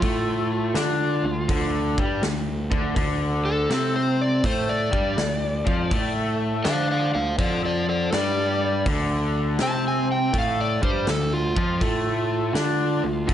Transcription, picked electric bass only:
0.02 A2
0.74 D3
1.23 D2
1.50 D2
1.98 G2
2.22 D2
2.72 D2
2.97 D2
3.70 C3
4.44 A2
4.93 G2
5.17 D2
5.67 F2
5.92 A2
6.66 D3
7.15 D2
7.38 F2
8.13 G2
8.86 D2
9.61 C3
10.33 A2
10.82 G2
11.08 D2
11.57 F2
11.82 A2
12.54 D3
13.04 D2
13.29 D2

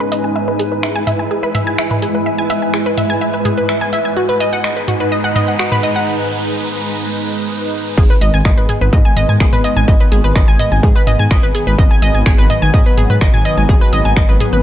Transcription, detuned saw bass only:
7.98 G#1
8.21 G#1
8.34 G#1
8.45 G#1
8.58 G#1
8.81 G#1
8.93 G#2
9.17 G#1
9.29 G#2
9.40 G#1
9.53 G#1
9.77 G#1
9.88 G#1
10.12 G#1
10.24 G#1
10.36 G#1
10.48 G#1
10.72 G#1
10.83 G#2
11.07 G#1
11.19 G#2
11.31 G#1
11.43 G#1
11.67 G#1
11.79 G#1
12.02 G#1
12.15 G#1
12.26 G#1
12.38 G#1
12.62 G#1
12.74 G#2
12.98 G#1
13.10 G#2
13.21 G#1
13.34 G#1
13.57 G#1
13.69 G#1
13.93 G#1
14.05 G#1
14.17 G#1
14.29 G#1
14.53 G#1

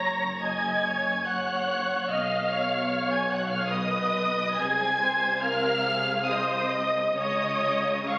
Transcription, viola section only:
Already playing: C#5
0.43 D#5
0.85 C#5
1.26 C#5
2.09 D#5
2.51 C#5
3.71 B4
4.60 G#4
5.02 C5
5.43 A#4
5.85 G#4
6.29 C5
6.72 D#5
7.18 C#5
8.08 F5

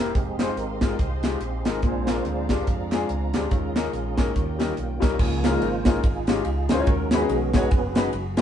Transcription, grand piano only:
0.39 G#3 D#4 F4 C5
0.82 G#3 D#4 F4 A#4
1.24 G#3 D#4 F4 G4
1.66 G#3 D#4 F4 A#4
1.84 A#2
2.06 G#3 D4 F4 A#4
2.50 G#3 D4 F4 G4
2.92 G#3 D4 F4 G#4
3.34 G#3 D4 F4 G4
3.51 D#3
3.76 G#3 C#4 D#4 A#4
4.17 G#3 C#4 D#4 A#4
4.36 D#3
4.59 G3 C#4 D#4 A#4
5.00 G3 C#4 D#4 A#4
5.20 C#3
5.44 G#3 C#4 D#4 F4 A#4
5.51 G#3 C#4 D#4 F4 A#4
5.86 G#3 C#4 D#4 F4 A#4
6.28 G#3 C#4 D#4 F4 G4
6.69 G#3 C#4 D#4 F4 C5
6.78 G#3 C#4 D#4 F4 C#5
6.88 D#3
7.12 G#3 C#4 D#4 F#4 B4
7.20 G#3 C#4 D#4 F#4 G#4
7.53 G#3 C#4 D#4 F#4 C#5
7.96 G#3 C#4 D#4 F#4 B4
8.37 G#3 C#4 D#4

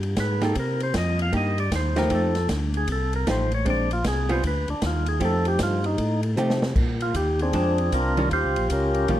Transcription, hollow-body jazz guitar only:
0.42 A#3 D#4 G4
1.33 A#3 D#4 G4
1.96 F3 A3 D#4 G4
2.10 F3 A3 D#4 G4
3.27 F3 A3 D#4 G4
3.65 G#3 C4 D4
4.29 G3 B3 F4 G#4
5.20 F3 A3 D#4 G4
6.37 F3 A3 D#4 G4
7.54 G#3 C4 D4
8.17 D#3 G3 C#4 F4
9.09 D#3 G3 C#4 F4

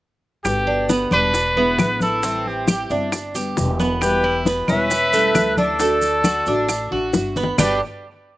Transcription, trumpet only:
0.44 G4
1.13 B4
2.02 A4
2.47 G4
4.02 G4
4.68 B4
5.58 A4
7.59 B4

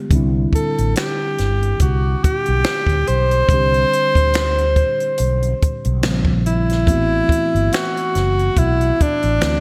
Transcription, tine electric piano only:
Already playing: D3 G3 G#3 B3 G4
0.09 D3 G3 D4
0.14 C4 E4
3.48 D3 G3 D4
3.52 C4 G4
6.02 C#3 F3 G3 A#3 C4
6.86 E3 A3 B3
6.90 C4 F#4
9.40 E3 A3 C4 D4 E4
9.50 F#4

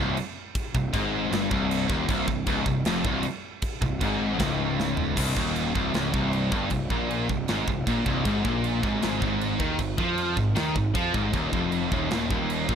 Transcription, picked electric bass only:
Already playing: C1
0.74 C1
0.93 G#1
1.31 G1
1.51 C1
1.89 D#1
2.09 C1
2.28 C1
2.47 C#1
2.66 C1
2.85 F1
3.05 C1
3.81 C1
4.01 G#1
4.40 C#1
5.17 C1
5.37 D#1
5.75 C1
5.94 C#1
6.14 C1
6.52 G1
6.71 C1
6.90 A#1
7.30 C1
7.49 G#1
7.68 C1
7.87 A#1
8.06 C1
8.25 G#1
8.45 A#1
8.83 G#1
9.03 G#1
9.22 G#1
9.60 D#2
9.79 G#1
9.98 F2
10.37 G#1
10.57 D#2
10.75 G#1
10.95 F2
11.14 G#1
11.34 D#1
11.53 F1
11.92 D#1
12.11 D#1
12.31 D#1
12.69 A#1

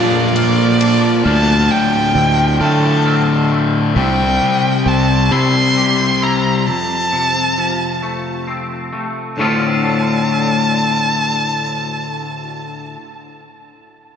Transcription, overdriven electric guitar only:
Already playing: A#2 F3 A#3
1.24 D2 A2 D3
2.60 D2 A2 D3
3.95 C3 G3 C4
5.31 C3 G3 C4

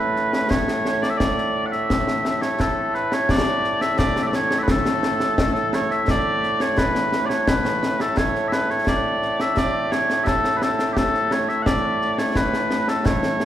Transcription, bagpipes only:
Already playing: A2 A3 B4
0.50 C#5
1.02 D5
1.10 E5
1.17 D5
1.66 F#5
1.72 E5
2.41 C#5
2.61 A4
2.95 B4
3.13 C#5
3.30 D5
3.81 E5
3.98 D5
4.22 E5
4.27 D5
4.35 C#5
4.58 E5
4.62 B4
4.70 A4
5.74 C#5
5.91 E5
6.10 D5
6.61 C#5
6.77 B4
7.26 C#5 D5
7.48 B4
8.01 A4
8.17 C#5
8.48 B4 E5
8.70 C#5
8.88 D5
9.41 E5
9.58 D5
9.92 C#5
10.23 A4 E5
10.57 B4
10.63 A4
10.92 G4
10.97 A4
11.32 C#5
11.49 E5
11.62 F#5
11.66 D5
12.18 C#5
12.36 B4
12.89 A4
13.06 C#5

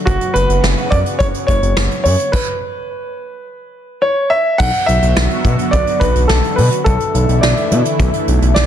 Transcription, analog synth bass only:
0.07 F#1
0.35 F#1
0.49 F#1
0.63 F#1
0.92 F#2
1.20 F#1
1.48 F#1
1.62 F#1
1.77 F#1
2.05 F#2
4.60 B1
4.88 B1
5.02 B1
5.16 B1
5.45 B2
5.73 B1
6.01 B1
6.16 B1
6.30 B1
6.58 B2
6.86 B1
7.15 B1
7.29 B1
7.43 B1
7.71 B2
8.00 B1
8.28 B1
8.42 B1
8.56 B1

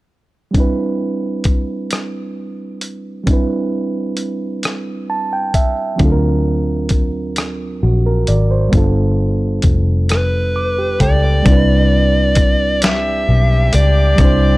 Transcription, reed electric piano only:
0.51 G3 C4
0.55 D4 E4
0.60 B4
3.24 G3 C4
3.28 D4 E4
3.33 B4
5.10 A5
5.33 G5
5.55 E5
5.96 F#3 C4
6.00 D4 F4
6.05 A4
6.12 A#4
7.83 F#4
8.06 A#4
8.28 D5
8.51 C5
8.69 G3 B3
8.73 D4 F4
8.77 A4
10.56 D6
10.78 G4
11.01 A4 G5
11.24 D5
11.43 G3 C4
11.47 D4 E4
11.52 B4
14.16 G3 C4
14.20 D4 E4
14.25 C5

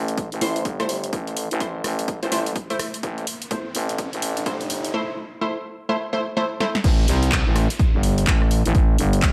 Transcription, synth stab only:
0.41 A3 E4 C5
0.80 A3 E4 C5
1.60 A3 E4 C5
2.23 A3 E4 C5
2.32 A3 E4 C5
2.70 A3 E4 C5
3.51 A3 E4 C5
4.46 A3 E4 C5
4.94 A3 E4 C5
5.41 A3 E4 C5
5.89 A3 E4 C5
6.13 A3 E4 C5
6.37 A3 E4 C5
6.60 A3 E4 C5

